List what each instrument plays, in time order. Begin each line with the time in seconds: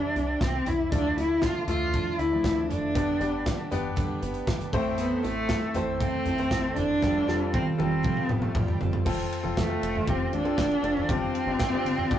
Already playing: grand piano C3 G3 D4 E4 G4 C5, cello D4, analog synth pad G4 E5 C6 D6
0.16 analog synth bass C2, closed hi-hat
0.41 analog synth bass C2, cello C4, kick, snare, closed hi-hat
0.66 analog synth bass C2, cello E4, closed hi-hat, floor tom
0.92 analog synth bass D2, grand piano D3 A3 E4 F4 D5, steel-string acoustic guitar D3 F3 D4 E4 A4, analog synth pad F3 A5, cello D4, kick, closed hi-hat
1.17 analog synth bass D2, steel-string acoustic guitar D4 E4 A4, cello E4, closed hi-hat
1.42 steel-string acoustic guitar F3 D4 E4 A4, cello F4, kick, snare, closed hi-hat
1.68 analog synth bass D2, grand piano A3 F4 A4 E5, steel-string acoustic guitar D4 E4 A4, cello F4, closed hi-hat, floor tom
1.93 steel-string acoustic guitar D3 F3 D4 E4 A4, kick, closed hi-hat
2.19 analog synth bass D2, steel-string acoustic guitar D4 E4 A4, cello E4, closed hi-hat
2.32 grand piano F3 A3 E4 D5
2.44 analog synth bass D2, steel-string acoustic guitar F3 D4 E4 A4, kick, snare, closed hi-hat
2.69 analog synth bass F1, cello D4, steel-string acoustic guitar D4 E4 A4, closed hi-hat, floor tom
2.94 analog synth bass G1, grand piano G2 B3 D4 G4 D5, steel-string acoustic guitar G2 D3 G3 B3 D4 B4, analog synth pad G4 D5 B5, kick, closed hi-hat
3.20 analog synth bass G1, steel-string acoustic guitar G3 B3 D4 B4, grand piano B3 D4 G4 D5, closed hi-hat
3.46 steel-string acoustic guitar G3 B3 D4 B4, kick, snare, closed hi-hat
3.71 analog synth bass G1, steel-string acoustic guitar G3 B3 D4 B4, grand piano B3 D4 G4 D5, closed hi-hat, floor tom
3.96 steel-string acoustic guitar G2 D3 G3 B3 D4 B4, kick, closed hi-hat
4.22 analog synth bass G1, steel-string acoustic guitar G3 B3 D4 B4, closed hi-hat
4.34 closed hi-hat
4.47 analog synth bass G1, steel-string acoustic guitar G3 B3 D4 B4, kick, snare, closed hi-hat
4.61 closed hi-hat
4.72 analog synth bass A1, grand piano A2 A3 C4 E4 C5, steel-string acoustic guitar A3 C4 E4 A4, analog synth pad A4 E5 E6, kick, floor tom, crash
4.98 steel-string acoustic guitar A2 E3 A3 C4 E4 A4, cello B3, closed hi-hat
5.16 cello B3
5.23 analog synth bass A1, cello A3, steel-string acoustic guitar A3 C4 E4 A4, closed hi-hat
5.49 steel-string acoustic guitar A3 C4 E4 A4, kick, snare, closed hi-hat
5.74 analog synth bass A1, grand piano A3 C4 E4 C5, steel-string acoustic guitar A3 C4 E4 A4, closed hi-hat, floor tom
6.00 steel-string acoustic guitar A2 E3 A3 C4 E4 A4, cello C4, kick, closed hi-hat
6.25 analog synth bass A1, steel-string acoustic guitar A3 C4 E4 A4, closed hi-hat, floor tom
6.38 grand piano A3 C4 E4 C5, closed hi-hat
6.51 analog synth bass A1, steel-string acoustic guitar A3 C4 E4 A4, kick, snare, closed hi-hat
6.76 analog synth bass G1, steel-string acoustic guitar A3 C4 E4 A4, cello D4, closed hi-hat, floor tom
7.02 analog synth bass F1, steel-string acoustic guitar F3 A3 C4 F4 G4, grand piano G3 C4 F4 A4, analog synth pad A4 F5 G5, kick, snare
7.27 analog synth bass F1, grand piano G3 C4 F4 A4, steel-string acoustic guitar C4 F4 G4, snare
7.53 steel-string acoustic guitar A3 C4 F4 G4, cello C4, kick, high tom
7.78 analog synth bass F1, grand piano G3 C4 F4 A4, cello C4, steel-string acoustic guitar C4 F4 G4, high tom
8.03 steel-string acoustic guitar F3 A3 C4 F4 G4, kick, mid tom
8.17 mid tom
8.29 analog synth bass F1, cello B3, steel-string acoustic guitar C4 F4 G4, mid tom
8.42 cello A3, mid tom
8.55 analog synth bass F1, cello G3, steel-string acoustic guitar A3 C4 F4 G4, kick, mid tom
8.68 floor tom
8.81 analog synth bass G1, steel-string acoustic guitar C4 F4 G4, floor tom
8.93 floor tom
9.05 analog synth bass F1, grand piano C4 F4 A4, analog synth pad A4 C5 F5 C6, kick, crash
9.33 ride
9.43 analog synth bass F1, grand piano C4 F4 A4
9.57 analog synth bass F1, cello A3, kick, snare, ride
9.69 grand piano C4 F4 A4
9.83 analog synth bass F1, ride
9.96 floor tom
10.07 analog synth bass F1, grand piano C4 F4 G4, cello C4, kick, ride
10.32 analog synth bass A1, cello D4, ride
10.44 grand piano C4 F4 A4, ride
10.58 analog synth bass F1, kick, snare, ride
10.71 ride
10.83 analog synth bass F1, grand piano C4 F4 A4, ride
10.97 floor tom
11.08 analog synth bass G1, grand piano G2 C4 D4 F4 G4 D5, cello C4, analog synth pad G4 D5, kick, ride
11.35 ride
11.46 analog synth bass G1, grand piano C4 D4 F4 G4 D5
11.59 analog synth bass G1, kick, snare, ride
11.73 grand piano C4 D4 F4 G4 D5
11.84 analog synth bass G1, ride
11.98 floor tom
12.10 analog synth bass G1, grand piano C4 D4 F4 G4 D5, kick, ride